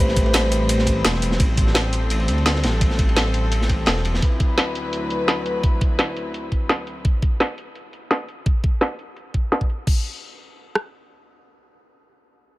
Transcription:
Already playing: detuned saw bass A1, string section G3 C4 B5, tine electric piano A3
0.00 tine electric piano G4 B4 C5
0.08 snare
0.16 kick, closed hi-hat, ride
0.22 tine electric piano A3 G4, ride
0.27 tine electric piano B4 C5
0.33 snare, closed hi-hat, ride
0.51 closed hi-hat, ride
0.69 closed hi-hat, ride
0.78 snare
0.86 kick, closed hi-hat, ride
1.05 detuned saw bass E1, snare, closed hi-hat, ride
1.14 snare
1.22 closed hi-hat, ride
1.31 snare
1.40 detuned saw bass A1, string section A4, kick, closed hi-hat, ride
1.57 kick, closed hi-hat, ride
1.67 snare
1.75 snare, closed hi-hat, ride
1.93 closed hi-hat, ride
2.10 closed hi-hat, ride
2.20 ride
2.28 detuned saw bass D2, closed hi-hat, ride
2.38 ride
2.46 snare, closed hi-hat, ride
2.55 snare
2.63 detuned saw bass A1, snare, closed hi-hat, ride
2.81 kick, closed hi-hat, ride
2.90 snare
2.99 kick, closed hi-hat, ride
3.09 ride
3.16 snare, closed hi-hat, ride
3.34 closed hi-hat, ride
3.52 closed hi-hat, ride
3.61 snare
3.69 kick, closed hi-hat, ride
3.86 detuned saw bass E1, snare, closed hi-hat, ride
3.96 snare
4.05 closed hi-hat, ride
4.14 snare
4.22 string section D2 F#3 E4 B4, kick, closed hi-hat
4.40 kick, closed hi-hat
4.58 snare, closed hi-hat
4.75 closed hi-hat
4.93 closed hi-hat
5.10 closed hi-hat
5.28 snare, closed hi-hat
5.46 closed hi-hat
5.63 kick, closed hi-hat
5.81 kick, closed hi-hat
5.99 snare, closed hi-hat
6.17 closed hi-hat
6.34 closed hi-hat
6.52 kick, closed hi-hat
6.69 snare, closed hi-hat
6.87 closed hi-hat
7.05 kick, closed hi-hat
7.22 kick, closed hi-hat
7.40 snare, closed hi-hat
7.58 closed hi-hat
7.75 closed hi-hat
7.93 closed hi-hat
8.11 snare, closed hi-hat
8.29 closed hi-hat
8.46 kick, closed hi-hat
8.64 kick, closed hi-hat
8.81 snare, closed hi-hat
8.99 closed hi-hat
9.17 closed hi-hat
9.34 kick, closed hi-hat
9.52 snare, closed hi-hat
9.61 kick
9.70 closed hi-hat
9.87 kick, crash
10.75 cross-stick

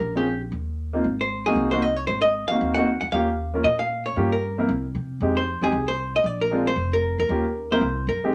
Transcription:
Already playing: hollow-body jazz guitar A#4
0.00 upright bass A#1
0.15 grand piano C4 C#4 F4 G#4, hollow-body jazz guitar G4
0.52 upright bass D#2
0.93 grand piano A#3 C4 D#4 F4
1.04 upright bass G#1
1.21 hollow-body jazz guitar C5
1.46 grand piano A#3 C4 D#4 F#4, hollow-body jazz guitar G#4
1.55 upright bass C2
1.71 grand piano A#3 C4 D#4 F#4, hollow-body jazz guitar C5
1.82 hollow-body jazz guitar D#5
1.96 hollow-body jazz guitar C#5
2.07 upright bass G#1, hollow-body jazz guitar C5
2.22 hollow-body jazz guitar D#5
2.48 grand piano A#3 C4 D#4 F#4, hollow-body jazz guitar F5, muted upright bass stroke
2.61 upright bass D#2
2.74 grand piano A#3 C4 D#4 F#4, hollow-body jazz guitar F#5
3.01 upright bass D2, hollow-body jazz guitar F#5
3.12 upright bass D#2, grand piano A#3 C#4 F4 G4, hollow-body jazz guitar F5
3.54 grand piano A#3 C#4 F4 A#4
3.64 upright bass A#2, hollow-body jazz guitar D#5
3.79 hollow-body jazz guitar F5
4.06 hollow-body jazz guitar C#5
4.16 upright bass G2, grand piano A#3 C#4 F4 G4
4.32 hollow-body jazz guitar A#4
4.58 grand piano A#3 C4 E4 A#4
4.69 upright bass C2
4.95 upright bass C3
5.20 upright bass F2, grand piano G#3 C4 D#4 G4
5.37 hollow-body jazz guitar C5
5.61 upright bass E2, grand piano G#3 C4 D#4 G4, hollow-body jazz guitar G#4
5.72 upright bass C2
5.88 hollow-body jazz guitar C5
6.16 hollow-body jazz guitar D#5
6.24 upright bass A#1, hollow-body jazz guitar D5
6.41 hollow-body jazz guitar A#4
6.51 grand piano G#3 C4 D4 F4
6.67 hollow-body jazz guitar C5
6.76 upright bass F1
6.93 hollow-body jazz guitar A#4
7.18 upright bass E2, hollow-body jazz guitar A#4
7.29 upright bass D#2, grand piano A#3 C#4 F4 G4
7.71 grand piano A#3 C4 E4 A#4, hollow-body jazz guitar C5
7.81 upright bass C2
8.07 upright bass F#2, hollow-body jazz guitar A#4
8.24 grand piano G#3 C4 D#4 G4

